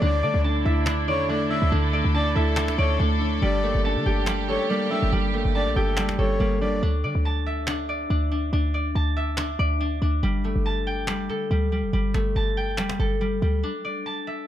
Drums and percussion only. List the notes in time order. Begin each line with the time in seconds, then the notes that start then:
0.02 cajon slap
0.23 cajon slap
0.34 cajon slap
0.44 cajon slap
0.66 cajon slap
0.77 cajon slap
0.86 cajon slap
1.08 cajon slap
1.29 cajon slap
1.51 cajon slap
1.62 cajon slap
1.72 cajon slap
2.14 cajon slap
2.36 cajon slap
2.56 cajon slap
2.68 cajon slap
2.78 cajon slap
3.00 cajon slap
3.21 cajon slap
3.42 cajon slap
3.63 cajon slap
3.75 cajon slap
3.85 cajon slap
4.06 cajon slap
4.17 cajon slap
4.26 cajon slap
4.49 cajon slap
4.70 cajon slap
4.91 cajon slap
5.02 cajon slap
5.12 cajon slap
5.55 cajon slap
5.76 cajon slap
5.97 cajon slap
6.09 cajon slap
6.26 cajon slap
6.33 cajon slap
6.40 cajon slap
6.61 cajon slap
6.73 cajon slap
6.83 cajon slap
7.04 cajon slap
7.25 cajon slap
7.46 cajon slap
7.67 cajon slap
7.89 cajon slap
8.10 cajon slap
8.31 cajon slap
8.53 cajon slap
8.74 cajon slap
8.95 cajon slap
9.17 cajon slap
9.37 cajon slap
9.59 cajon slap
9.80 cajon slap
10.02 cajon slap
10.23 cajon slap
10.44 cajon slap
10.65 cajon slap
10.87 cajon slap
11.07 cajon slap
11.29 cajon slap
11.51 cajon slap
11.72 cajon slap
11.93 cajon slap
12.14 cajon slap
12.36 cajon slap
12.57 cajon slap
12.64 cajon slap
12.71 cajon slap
12.77 cajon slap
12.90 cajon slap
13.00 cajon slap
13.21 cajon slap
13.42 cajon slap
13.63 cajon slap
13.85 cajon slap
14.06 cajon slap
14.27 cajon slap